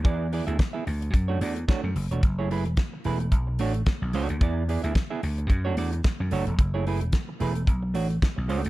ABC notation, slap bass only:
X:1
M:4/4
L:1/16
Q:"Swing 16ths" 1/4=110
K:Emix
V:1 name="Slap bass" clef=bass
E,,3 D,, z2 D,,2 F,,2 E,,2 z F,, F,,, E,,, | F,,,3 E,,, z2 E,,,2 B,,,2 A,,,2 z B,,, C,, D,, | E,,3 D,, z2 D,,2 F,,2 E,,2 z F,, F,,, E,,, | F,,,3 E,,, z2 E,,,2 B,,,2 A,,,2 z B,,, C,, D,, |]